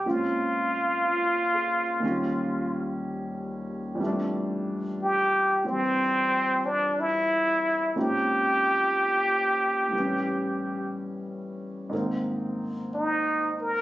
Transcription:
0.06 grand piano A#2 F3 G#3 C4 C#4, muted trumpet F4
1.05 grand piano F4
1.54 grand piano G#4
2.00 grand piano D#2 D#3 F3
2.04 grand piano G3 C#4
3.95 grand piano F2 E3
4.00 grand piano G3 A3
4.06 grand piano D4
5.02 muted trumpet G4
5.64 grand piano E3 G3 C4, muted trumpet C4
6.66 muted trumpet D4
7.00 muted trumpet E4
7.96 grand piano A#2 F3 G#3 C4 C#4 D#4, muted trumpet G4
9.88 grand piano A2 E3
9.93 grand piano G3 B3
9.99 grand piano C#4
11.89 grand piano G#2 D#3
11.94 grand piano A#3 C4
12.94 muted trumpet D#4
13.62 muted trumpet A#4

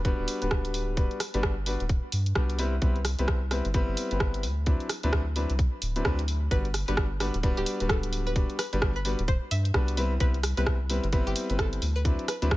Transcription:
Already playing: sub bass D1
0.05 grand piano G3 B3 D4 F#4 B4, kick, closed hi-hat
0.19 sub bass D1
0.28 open hi-hat
0.42 sub bass D1, grand piano G3 B3 D4 F#4 B4, closed hi-hat
0.51 kick, cross-stick
0.65 closed hi-hat
0.74 open hi-hat
0.97 grand piano G3 B3 D4 F#4 B4, kick, closed hi-hat
1.11 closed hi-hat
1.20 cross-stick, open hi-hat
1.34 sub bass G1, grand piano G3 B3 D4 F#4 B4, closed hi-hat
1.43 kick, cross-stick
1.66 grand piano G3 B3 D4 F#4 B4, open hi-hat
1.80 sub bass D1, closed hi-hat
1.89 kick, closed hi-hat
2.12 sub bass G2, open hi-hat
2.26 closed hi-hat
2.35 sub bass C2, grand piano G3 B3 D4 F#4 B4, kick, cross-stick
2.50 closed hi-hat
2.59 grand piano G3 B3 C4 E4 B4, open hi-hat
2.82 sub bass C2, grand piano G3 B3 C4 E4 B4, kick, closed hi-hat
2.96 closed hi-hat
3.05 cross-stick, open hi-hat
3.19 sub bass C2, grand piano G3 B3 C4 E4 B4, closed hi-hat
3.28 kick, cross-stick
3.51 grand piano G3 B3 C4 E4 B4, cross-stick, open hi-hat
3.65 sub bass G1, closed hi-hat
3.74 grand piano G3 B3 C4 E4 B4, kick, closed hi-hat
3.88 sub bass G1
3.97 open hi-hat
4.11 sub bass G1, grand piano G3 B3 C4 E4 B4, closed hi-hat
4.20 kick, cross-stick
4.34 closed hi-hat
4.43 sub bass D2, open hi-hat
4.66 grand piano F#3 C4 D4 E4 B4, kick, closed hi-hat
4.80 closed hi-hat
4.89 cross-stick, open hi-hat
5.03 sub bass D2, grand piano F#3 C4 D4 E4 B4, closed hi-hat
5.13 kick, cross-stick
5.36 grand piano F#3 C4 D4 E4 B4, open hi-hat
5.50 sub bass C2, closed hi-hat
5.59 kick, closed hi-hat
5.82 sub bass D1, open hi-hat
5.96 grand piano F#3 C4 D4 E4 B4, closed hi-hat
6.05 sub bass D2, grand piano F#3 C4 D4 E4 B4, kick, cross-stick
6.19 closed hi-hat
6.28 open hi-hat
6.51 sub bass G1, grand piano G3 B3 D4 F#4 B4, synth pluck B4, kick, closed hi-hat
6.65 closed hi-hat
6.74 cross-stick, open hi-hat
6.88 sub bass G1, grand piano G3 B3 D4 F#4 B4, synth pluck B4, closed hi-hat
6.97 kick, cross-stick
7.20 grand piano G3 B3 D4 F#4 B4, cross-stick, open hi-hat
7.34 sub bass D1, closed hi-hat
7.43 grand piano G3 B3 D4 F#4 B4, kick, closed hi-hat
7.57 sub bass D1, synth pluck G4
7.66 open hi-hat
7.80 sub bass D1, grand piano G3 B3 D4 F#4 B4, closed hi-hat
7.89 synth pluck A4, kick, cross-stick
8.03 closed hi-hat
8.13 open hi-hat
8.27 synth pluck B4
8.36 grand piano G3 B3 D4 F#4 B4, kick, closed hi-hat
8.50 closed hi-hat
8.59 synth pluck B4, cross-stick, open hi-hat
8.73 sub bass G1, grand piano G3 B3 D4 F#4 B4, closed hi-hat
8.82 kick, cross-stick
8.96 synth pluck B4
9.05 grand piano G3 B3 D4 F#4 B4, open hi-hat
9.19 sub bass D1, closed hi-hat
9.28 synth pluck C5, kick, closed hi-hat
9.51 sub bass G2, synth pluck E5, open hi-hat
9.65 closed hi-hat
9.74 sub bass C2, grand piano G3 B3 D4 F#4 B4, kick, cross-stick
9.88 closed hi-hat
9.97 grand piano G3 B3 C4 E4 B4, open hi-hat
10.20 sub bass C2, grand piano G3 B3 C4 E4 B4, synth pluck B4, kick, closed hi-hat
10.34 closed hi-hat
10.43 cross-stick, open hi-hat
10.57 sub bass C2, grand piano G3 B3 C4 E4 B4, synth pluck B4, closed hi-hat
10.67 kick, cross-stick
10.90 grand piano G3 B3 C4 E4 B4, open hi-hat
11.04 sub bass G1, closed hi-hat
11.13 grand piano G3 B3 C4 E4 B4, kick, closed hi-hat
11.27 sub bass G1, synth pluck G4
11.36 open hi-hat
11.50 sub bass G1, grand piano G3 B3 C4 E4 B4, closed hi-hat
11.59 synth pluck A4, kick, cross-stick
11.73 closed hi-hat
11.82 sub bass D2, open hi-hat
11.96 synth pluck B4
12.05 grand piano F#3 C4 D4 E4 B4, kick, closed hi-hat
12.19 closed hi-hat
12.28 synth pluck B4, cross-stick, open hi-hat
12.42 sub bass D2, grand piano F#3 C4 D4 E4 B4, closed hi-hat
12.51 kick, cross-stick

